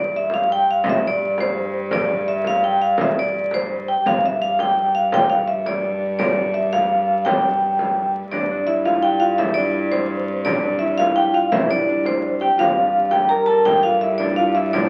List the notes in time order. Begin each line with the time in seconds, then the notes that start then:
Already playing: G2 D5
0.13 E5, frame drum
0.30 F5, frame drum
0.52 G5
0.66 frame drum
0.71 F5
0.84 frame drum
0.90 E5
1.02 frame drum
1.07 D5
1.21 frame drum
1.38 C5, frame drum
1.74 frame drum
1.91 D5, frame drum
2.08 frame drum
2.27 E5, frame drum
2.44 F5, frame drum
2.64 G5
2.81 F5
2.98 E5, frame drum
3.19 D5
3.51 C5, frame drum
3.70 frame drum
3.88 G5
4.06 G2 F5, frame drum
4.24 E5, frame drum
4.41 F5, frame drum
4.59 G5, frame drum
4.94 F5, frame drum
5.12 G5, frame drum
5.30 F5, frame drum
5.48 E5, frame drum
5.66 D5, frame drum
6.01 frame drum
6.19 D5, frame drum
6.37 frame drum
6.54 E5, frame drum
6.73 F5, frame drum
7.08 frame drum
7.25 G5, frame drum
7.61 frame drum
7.79 frame drum
7.96 frame drum
8.31 G2 D4 D5, frame drum
8.51 D4
8.67 E4 E5, frame drum
8.85 F4 F5, frame drum
9.02 G4 G5
9.20 F4 F5, frame drum
9.38 E4 E5, frame drum
9.54 D4 D5, frame drum
9.75 frame drum
9.92 C4 C5, frame drum
10.28 frame drum
10.45 D4 D5, frame drum
10.63 D4, frame drum
10.79 E4 E5, frame drum
10.98 F4 F5, frame drum
11.16 G4 G5
11.33 F4 F5, frame drum
11.52 E4 E5, frame drum
11.68 D4 D5
11.88 D4
12.04 C4 C5, frame drum
12.41 G4 G5
12.58 G2 F4 F5, frame drum
12.77 frame drum
12.95 frame drum
13.11 G4 G5, frame drum
13.29 A#4 A#5
13.46 A4 A5, frame drum
13.65 G4 G5, frame drum
13.83 F4 F5, frame drum
14.01 E4 E5, frame drum
14.18 D4 D5, frame drum
14.36 F4 F5
14.55 E4 E5
14.73 D4 D5, frame drum